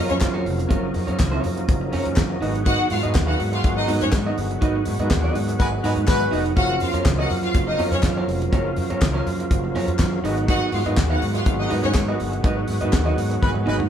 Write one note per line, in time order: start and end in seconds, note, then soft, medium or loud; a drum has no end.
0.00 2.38 C#3 medium
0.00 2.38 F3 medium
0.00 13.89 F#3 medium
0.00 2.38 A#3 medium
0.00 0.17 C#4 medium
0.00 0.69 F4 medium
0.09 0.19 F#2 loud
0.09 0.19 C#4 medium
0.09 0.19 C#5 medium
0.09 muted clean electric guitar stroke medium
0.09 closed hi-hat medium
0.20 0.38 F#2 loud
0.20 muted clean electric guitar stroke soft
0.20 kick loud
0.20 snare medium
0.20 clap loud
0.20 clap medium
0.20 closed hi-hat medium
0.34 0.44 C#4 medium
0.34 0.45 F4 medium
0.34 0.45 A#4 medium
0.34 0.45 C#5 medium
0.45 0.63 F1 loud
0.45 muted clean electric guitar stroke soft
0.45 open hi-hat medium
0.59 muted clean electric guitar stroke soft
0.59 closed hi-hat soft
0.69 0.87 F#1 loud
0.69 0.89 C#4 medium
0.69 2.40 D#4 medium
0.69 0.82 F4 medium
0.69 0.82 A#4 loud
0.69 0.81 C#5 medium
0.69 kick loud
0.69 closed hi-hat medium
0.83 muted clean electric guitar stroke soft
0.94 1.04 F#2 medium
0.94 muted clean electric guitar stroke soft
0.94 open hi-hat medium
1.07 1.16 F#2 loud
1.07 1.17 C#4 soft
1.07 1.17 F4 medium
1.07 1.17 A#4 medium
1.07 1.18 C#5 medium
1.07 closed hi-hat soft
1.18 1.36 C#2 loud
1.18 muted clean electric guitar stroke soft
1.18 kick loud
1.18 snare loud
1.18 clap medium
1.18 closed hi-hat medium
1.32 1.42 C#4 medium
1.32 1.42 F4 medium
1.32 1.43 A#4 medium
1.32 1.43 C#5 medium
1.43 1.61 F#2 loud
1.43 muted clean electric guitar stroke soft
1.43 open hi-hat medium
1.56 muted clean electric guitar stroke soft
1.56 closed hi-hat medium
1.68 1.85 F#1 loud
1.68 muted clean electric guitar stroke soft
1.68 kick loud
1.68 closed hi-hat medium
1.81 muted clean electric guitar stroke soft
1.93 2.02 F#2 loud
1.93 2.12 C#4 medium
1.93 2.06 F4 medium
1.93 2.05 A#4 medium
1.93 2.04 C#5 medium
1.93 open hi-hat medium
2.05 2.14 F#2 loud
2.05 muted clean electric guitar stroke medium
2.05 closed hi-hat medium
2.16 2.34 F#2 loud
2.16 kick loud
2.16 snare loud
2.16 clap medium
2.16 closed hi-hat medium
2.30 muted clean electric guitar stroke soft
2.41 2.75 G#1 loud
2.41 6.53 D#3 medium
2.41 6.53 G#3 medium
2.41 6.53 B3 medium
2.41 2.61 D#4 medium
2.41 6.53 F#4 medium
2.41 2.54 F#4 medium
2.41 2.54 B4 medium
2.41 2.53 D#5 medium
2.41 open hi-hat medium
2.54 muted clean electric guitar stroke soft
2.54 closed hi-hat soft
2.66 2.86 D#4 medium
2.66 2.76 F#4 loud
2.66 2.79 F#4 loud
2.66 2.79 B4 medium
2.66 2.78 D#5 loud
2.66 2.76 F#5 loud
2.66 kick loud
2.66 closed hi-hat medium
2.79 muted clean electric guitar stroke medium
2.90 3.00 G#2 loud
2.90 3.01 F4 medium
2.90 3.01 F5 medium
2.90 muted clean electric guitar stroke soft
2.90 open hi-hat medium
3.03 3.12 G#2 loud
3.03 3.14 D#4 soft
3.03 3.14 F#4 medium
3.03 3.14 B4 medium
3.03 3.15 D#5 medium
3.03 closed hi-hat soft
3.15 3.32 D#2 medium
3.15 muted clean electric guitar stroke medium
3.15 kick loud
3.15 snare loud
3.15 clap medium
3.15 closed hi-hat medium
3.27 3.37 D#4 medium
3.27 3.38 F#4 medium
3.27 3.38 B4 medium
3.27 3.39 F5 medium
3.27 3.37 F#5 medium
3.39 3.57 G#2 loud
3.39 muted clean electric guitar stroke soft
3.39 open hi-hat medium
3.52 3.62 F4 medium
3.52 3.62 F5 medium
3.52 muted clean electric guitar stroke soft
3.52 closed hi-hat medium
3.64 3.81 G#1 loud
3.64 muted clean electric guitar stroke soft
3.64 kick loud
3.64 closed hi-hat medium
3.77 3.86 D#4 medium
3.77 3.86 D#5 loud
3.77 muted clean electric guitar stroke soft
3.88 3.98 G#2 loud
3.88 4.08 D#4 medium
3.88 4.02 F#4 medium
3.88 4.02 B4 medium
3.88 4.01 D#5 medium
3.88 open hi-hat medium
4.01 4.10 G#2 loud
4.01 4.11 C#4 medium
4.01 4.10 C#5 medium
4.01 muted clean electric guitar stroke soft
4.01 closed hi-hat medium
4.12 4.29 G#2 loud
4.12 muted clean electric guitar stroke soft
4.12 kick loud
4.12 snare loud
4.12 clap loud
4.12 clap medium
4.12 closed hi-hat medium
4.26 4.37 D#4 medium
4.26 4.38 F#4 medium
4.26 4.38 B4 medium
4.26 4.38 D#5 medium
4.38 4.54 G1 loud
4.38 muted clean electric guitar stroke soft
4.38 open hi-hat medium
4.51 muted clean electric guitar stroke soft
4.51 closed hi-hat soft
4.61 4.79 G#1 loud
4.61 4.81 D#4 loud
4.61 4.76 F#4 medium
4.61 4.75 B4 loud
4.61 4.75 D#5 loud
4.61 kick loud
4.61 closed hi-hat medium
4.76 muted clean electric guitar stroke soft
4.85 4.95 G#2 medium
4.85 muted clean electric guitar stroke soft
4.85 open hi-hat medium
4.99 5.07 G#2 loud
4.99 5.10 D#4 medium
4.99 5.10 F#4 medium
4.99 5.11 B4 medium
4.99 5.11 D#5 medium
4.99 closed hi-hat soft
5.10 5.27 D#2 medium
5.10 muted clean electric guitar stroke soft
5.10 kick loud
5.10 snare loud
5.10 clap medium
5.10 closed hi-hat medium
5.24 5.34 D#4 medium
5.24 5.35 F#4 medium
5.24 5.35 B4 medium
5.24 5.36 D#5 medium
5.35 5.52 G#2 loud
5.35 muted clean electric guitar stroke soft
5.35 open hi-hat medium
5.48 muted clean electric guitar stroke soft
5.48 closed hi-hat medium
5.59 5.76 G#1 loud
5.59 5.68 G#3 medium
5.59 5.68 F#4 medium
5.59 5.68 B4 loud
5.59 muted clean electric guitar stroke soft
5.59 kick loud
5.59 closed hi-hat medium
5.72 muted clean electric guitar stroke soft
5.83 5.93 G#2 loud
5.83 5.92 G#3 medium
5.83 6.04 D#4 medium
5.83 5.92 F#4 medium
5.83 5.96 F#4 medium
5.83 5.92 B4 medium
5.83 5.96 B4 medium
5.83 5.96 D#5 medium
5.83 open hi-hat medium
5.97 6.05 G#2 loud
5.97 muted clean electric guitar stroke soft
5.97 closed hi-hat medium
6.07 6.25 G#2 loud
6.07 6.44 G#3 loud
6.07 6.44 F#4 loud
6.07 6.44 B4 loud
6.07 kick loud
6.07 snare loud
6.07 clap medium
6.07 closed hi-hat medium
6.21 muted clean electric guitar stroke soft
6.31 6.49 F1 loud
6.31 6.52 D#4 medium
6.31 6.45 F#4 medium
6.31 6.45 B4 medium
6.31 6.44 D#5 loud
6.31 open hi-hat medium
6.45 muted clean electric guitar stroke soft
6.45 closed hi-hat soft
6.56 6.74 F#1 loud
6.56 10.20 C#3 medium
6.56 10.20 F3 medium
6.56 10.20 A#3 medium
6.56 6.76 C#4 medium
6.56 10.20 F4 medium
6.56 6.69 F4 medium
6.56 6.67 F#4 loud
6.56 6.69 A#4 medium
6.56 6.68 C#5 medium
6.56 6.67 F#5 loud
6.56 kick loud
6.56 closed hi-hat medium
6.70 muted clean electric guitar stroke soft
6.80 6.90 F#2 medium
6.80 6.92 F4 medium
6.80 6.92 F5 medium
6.80 muted clean electric guitar stroke soft
6.80 open hi-hat medium
6.94 7.02 F#2 loud
6.94 7.04 C#4 soft
6.94 7.05 F4 medium
6.94 7.05 A#4 medium
6.94 7.05 C#5 medium
6.94 closed hi-hat soft
7.05 7.22 C#2 medium
7.05 muted clean electric guitar stroke soft
7.05 kick loud
7.05 snare loud
7.05 clap medium
7.05 closed hi-hat medium
7.19 7.29 C#4 medium
7.19 7.30 F4 medium
7.19 7.28 F#4 medium
7.19 7.30 A#4 medium
7.19 7.31 D#5 medium
7.19 7.28 F#5 loud
7.30 7.47 F#2 medium
7.30 muted clean electric guitar stroke soft
7.30 open hi-hat medium
7.43 7.53 F4 medium
7.43 7.53 F5 medium
7.43 muted clean electric guitar stroke soft
7.43 closed hi-hat medium
7.54 7.71 F#1 loud
7.54 muted clean electric guitar stroke soft
7.54 kick loud
7.54 closed hi-hat medium
7.67 7.77 D#4 loud
7.67 7.77 D#5 loud
7.67 muted clean electric guitar stroke soft
7.78 7.88 F#2 loud
7.78 7.99 C#4 medium
7.78 7.92 F4 medium
7.78 7.92 A#4 medium
7.78 7.91 C#5 medium
7.78 open hi-hat medium
7.92 8.00 F#2 loud
7.92 8.02 C#4 medium
7.92 8.02 C#5 medium
7.92 muted clean electric guitar stroke medium
7.92 closed hi-hat medium
8.03 8.20 F#2 loud
8.03 muted clean electric guitar stroke medium
8.03 kick loud
8.03 snare medium
8.03 clap loud
8.03 clap medium
8.03 closed hi-hat medium
8.17 8.27 C#4 medium
8.17 8.27 F4 medium
8.17 8.28 A#4 medium
8.17 8.28 C#5 medium
8.28 8.45 F1 loud
8.28 muted clean electric guitar stroke soft
8.28 open hi-hat medium
8.41 muted clean electric guitar stroke soft
8.41 closed hi-hat soft
8.52 8.69 F#1 loud
8.52 8.72 C#4 medium
8.52 8.66 F4 medium
8.52 8.65 A#4 medium
8.52 8.64 C#5 loud
8.52 kick loud
8.52 closed hi-hat medium
8.66 muted clean electric guitar stroke soft
8.76 8.86 F#2 medium
8.76 muted clean electric guitar stroke soft
8.76 open hi-hat medium
8.90 8.98 F#2 loud
8.90 9.00 C#4 soft
8.90 9.01 F4 medium
8.90 9.01 A#4 medium
8.90 9.01 C#5 medium
8.90 closed hi-hat soft
9.01 9.18 C#2 medium
9.01 muted clean electric guitar stroke soft
9.01 kick loud
9.01 snare loud
9.01 clap medium
9.01 closed hi-hat medium
9.14 9.25 C#4 medium
9.14 9.26 F4 medium
9.14 9.26 A#4 medium
9.14 9.26 C#5 loud
9.26 9.43 F#2 loud
9.26 muted clean electric guitar stroke soft
9.26 open hi-hat medium
9.39 muted clean electric guitar stroke soft
9.39 closed hi-hat soft
9.51 9.68 F#1 loud
9.51 muted clean electric guitar stroke soft
9.51 kick loud
9.51 closed hi-hat medium
9.64 muted clean electric guitar stroke soft
9.75 9.84 F#2 loud
9.75 9.95 C#4 medium
9.75 9.88 F4 medium
9.75 9.88 A#4 medium
9.75 9.87 C#5 loud
9.75 open hi-hat medium
9.88 9.96 F#2 medium
9.88 muted clean electric guitar stroke soft
9.88 closed hi-hat medium
9.99 10.16 F#2 loud
9.99 kick loud
9.99 snare loud
9.99 clap loud
9.99 clap medium
9.99 closed hi-hat medium
10.13 muted clean electric guitar stroke soft
10.23 10.57 G#1 loud
10.23 13.89 D#3 medium
10.23 13.89 G#3 medium
10.23 13.89 B3 medium
10.23 10.43 D#4 medium
10.23 13.89 F#4 medium
10.23 10.37 F#4 medium
10.23 10.36 B4 medium
10.23 10.36 D#5 medium
10.23 open hi-hat medium
10.37 muted clean electric guitar stroke soft
10.37 closed hi-hat soft
10.48 10.68 D#4 medium
10.48 10.59 F#4 loud
10.48 10.61 F#4 loud
10.48 10.60 B4 loud
10.48 10.60 D#5 loud
10.48 10.59 F#5 loud
10.48 kick loud
10.48 closed hi-hat medium
10.61 muted clean electric guitar stroke soft
10.72 10.82 G#2 loud
10.72 10.83 F4 medium
10.72 10.83 F5 medium
10.72 muted clean electric guitar stroke soft
10.72 open hi-hat medium
10.86 10.94 G#2 medium
10.86 10.96 D#4 medium
10.86 10.96 F#4 medium
10.86 10.96 B4 medium
10.86 10.97 D#5 medium
10.86 closed hi-hat soft
10.97 11.14 D#2 loud
10.97 muted clean electric guitar stroke medium
10.97 kick loud
10.97 snare loud
10.97 clap medium
10.97 closed hi-hat medium
11.10 11.21 D#4 medium
11.10 11.20 F#4 medium
11.10 11.21 F#4 medium
11.10 11.22 B4 medium
11.10 11.23 F5 medium
11.10 11.20 F#5 medium
11.22 11.39 G#2 loud
11.22 muted clean electric guitar stroke soft
11.22 open hi-hat medium
11.34 11.44 F4 medium
11.34 11.44 F5 medium
11.34 muted clean electric guitar stroke soft
11.34 closed hi-hat soft
11.46 11.63 G#1 loud
11.46 muted clean electric guitar stroke soft
11.46 kick loud
11.46 closed hi-hat medium
11.59 11.68 D#4 medium
11.59 11.68 D#5 loud
11.59 muted clean electric guitar stroke soft
11.70 11.80 G#2 loud
11.70 11.90 D#4 medium
11.70 11.84 F#4 medium
11.70 11.83 B4 loud
11.70 11.83 D#5 loud
11.70 open hi-hat medium
11.83 11.92 G#2 medium
11.83 11.93 C#4 medium
11.83 11.93 C#5 medium
11.83 muted clean electric guitar stroke medium
11.83 closed hi-hat soft
11.94 12.12 G#2 loud
11.94 muted clean electric guitar stroke medium
11.94 kick loud
11.94 snare medium
11.94 clap medium
11.94 closed hi-hat medium
12.08 12.18 D#4 medium
12.08 12.18 F#4 medium
12.08 12.19 B4 medium
12.08 12.19 D#5 medium
12.19 12.37 G1 medium
12.19 muted clean electric guitar stroke soft
12.19 open hi-hat medium
12.32 muted clean electric guitar stroke soft
12.32 closed hi-hat soft
12.44 12.61 G#1 loud
12.44 12.64 D#4 medium
12.44 12.56 F#4 medium
12.44 12.56 B4 loud
12.44 12.55 D#5 loud
12.44 kick loud
12.44 closed hi-hat medium
12.56 muted clean electric guitar stroke soft
12.68 12.77 G#2 loud
12.68 muted clean electric guitar stroke soft
12.68 open hi-hat medium
12.81 12.90 G#2 loud
12.81 12.92 D#4 medium
12.81 12.92 F#4 soft
12.81 12.92 B4 medium
12.81 12.93 D#5 medium
12.81 closed hi-hat soft
12.92 13.10 D#2 loud
12.92 muted clean electric guitar stroke soft
12.92 kick loud
12.92 snare loud
12.92 clap medium
12.92 closed hi-hat medium
13.06 13.15 D#4 medium
13.06 13.16 F#4 medium
13.06 13.16 B4 medium
13.06 13.16 D#5 medium
13.17 13.34 G#2 loud
13.17 muted clean electric guitar stroke soft
13.17 open hi-hat medium
13.30 muted clean electric guitar stroke soft
13.30 closed hi-hat soft
13.42 13.51 G#1 loud
13.42 13.50 G#3 medium
13.42 13.50 F#4 medium
13.42 13.50 B4 loud
13.42 muted clean electric guitar stroke soft
13.42 kick loud
13.42 high tom medium
13.54 13.63 G#2 medium
13.54 muted clean electric guitar stroke medium
13.54 high tom medium
13.66 13.76 G#1 loud
13.66 13.75 G#3 medium
13.66 13.86 D#4 medium
13.66 13.79 F#4 medium
13.66 13.75 F#4 medium
13.66 13.78 B4 medium
13.66 13.75 B4 loud
13.66 13.78 D#5 medium
13.66 mid tom medium
13.79 13.88 G#2 medium
13.79 muted clean electric guitar stroke soft
13.79 mid tom medium